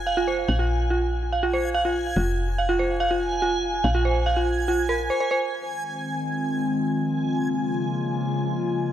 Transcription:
Already playing: F1 G#5
0.07 F5
0.17 F4
0.28 C5
0.48 A#1 F5
0.59 F4
0.90 F4
1.33 F5
1.43 F4
1.53 C5
1.74 F5
1.85 F4
2.16 F1 F4
2.58 F5
2.69 F4
2.79 C5
3.00 F5
3.11 F4
3.42 F4
3.84 A#1 F5
3.95 F4
4.05 C5
4.26 F5
4.37 F4
4.68 F4
4.89 A#4
5.10 C5
5.20 C5
5.31 C5
5.52 D#3 F3 G#3 C4 F4 G#5
7.20 C#3 G#3 A#3
8.88 D#3 C4

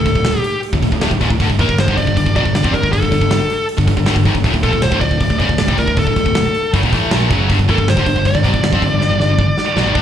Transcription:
Already playing: A4
0.06 D1 D2 A2, kick, open hi-hat
0.15 D1 D2 A2, kick
0.25 D1 D2 A2, snare, open hi-hat
0.40 G4
0.44 open hi-hat
0.63 open hi-hat
0.73 D1 D2 A2, kick
0.82 D1 D2 A2, kick, open hi-hat
0.92 D1 D2 A2, kick
1.01 D1 D2 A2, snare, open hi-hat
1.11 D1 D2 A2, kick
1.20 D#1 D#2 A#2, kick, open hi-hat
1.30 D1 D2 A2, kick
1.40 G1 G2 D3, kick, open hi-hat
1.50 G1 G2 D3, kick
1.59 D#2 D#3 A#3 A#4, kick, open hi-hat
1.68 G1 G2 D3, kick
1.77 G1 G2 D3 C5, snare, open hi-hat
1.88 G1 G2 D3, kick
1.97 G1 G2 D3 D5, kick, open hi-hat
2.07 G1 G2 D3, kick
2.16 G1 G2 D3, kick, open hi-hat
2.26 G1 G2 D3, kick
2.35 B1 B2 F#3 D5, kick, open hi-hat
2.45 G1 G2 D3, kick
2.54 G1 G2 D3, snare, open hi-hat
2.64 F2 F3 C4, kick
2.73 G1 G2 D3 A#4, kick, open hi-hat
2.82 G1 G2 D3, kick
2.92 G1 G2 D3 A4, kick, open hi-hat
3.01 G1 G2 D3, kick
3.12 G1 G2 D3, kick, open hi-hat
3.21 G1 G2 D3, kick
3.30 G1 G2 D3, snare, open hi-hat
3.50 open hi-hat
3.69 open hi-hat
3.77 G1 G2 D3, kick
3.87 G1 G2 D3, kick, open hi-hat
3.97 G1 G2 D3, kick
4.06 G1 G2 D3, snare, open hi-hat
4.16 G1 G2 D3, kick
4.25 G#1 G#2 D#3, kick, open hi-hat
4.35 G1 G2 D3, kick
4.44 D1 D2 A2, kick, open hi-hat
4.54 D1 D2 A2, kick
4.63 A#1 A#2 F3 A4, kick, open hi-hat
4.73 D1 D2 A2, kick
4.82 D1 D2 A2 C5, snare, open hi-hat
4.91 D1 D2 A2, kick
5.01 D1 D2 A2 D5, kick, open hi-hat
5.11 D1 D2 A2, kick
5.19 D1 D2 A2, kick, open hi-hat
5.30 D1 D2 A2, kick
5.39 F#1 F#2 C#3 D5, kick, open hi-hat
5.49 D1 D2 A2, kick
5.58 D1 D2 A2, snare, open hi-hat
5.68 C2 C3 G3, kick
5.78 D1 D2 A2 A#4, kick, open hi-hat
5.87 D1 D2 A2, kick
5.97 D1 D2 A2 A4, kick, open hi-hat
6.07 D1 D2 A2, kick
6.16 D1 D2 A2, kick, open hi-hat
6.26 D1 D2 A2, kick
6.35 D1 D2 A2, snare, open hi-hat
6.55 open hi-hat
6.73 F#1 F#2 C#3, kick, open hi-hat
6.83 D#1 D#2 A#2, kick
6.92 A1 A2 E3 A3, kick, open hi-hat
7.11 A#1 A#2 F3 A#3, snare, open hi-hat
7.30 F#1 F#2 C#3 F#3, kick, open hi-hat
7.49 G1 G2 D3, kick, open hi-hat
7.58 G1 G2 D3, kick
7.68 D#2 D#3 A#3 A4, kick, open hi-hat
7.78 G1 G2 D3, kick
7.87 G1 G2 D3 C5, snare, open hi-hat
7.97 G1 G2 D3, kick
8.06 G1 G2 D3, kick, open hi-hat
8.16 G1 G2 D3, kick
8.25 G1 G2 D3 D5, kick, open hi-hat
8.35 G1 G2 D3, kick
8.44 B1 B2 F#3, kick, open hi-hat
8.53 G1 G2 D3, kick
8.64 G1 G2 D3, snare, open hi-hat
8.72 F2 F3 C4, kick
8.82 G1 G2 D3, kick, open hi-hat
8.92 G1 G2 D3
9.01 G1 G2 D3, snare
9.10 G1 G2 D3
9.20 G1 G2 D3, snare
9.29 G1 G2 D3
9.38 G1 G2 D3, kick
9.58 snare
9.77 B1 B2 F#3, snare
9.85 G#1 G#2 D#3
9.95 D2 D3 A3 D4, kick

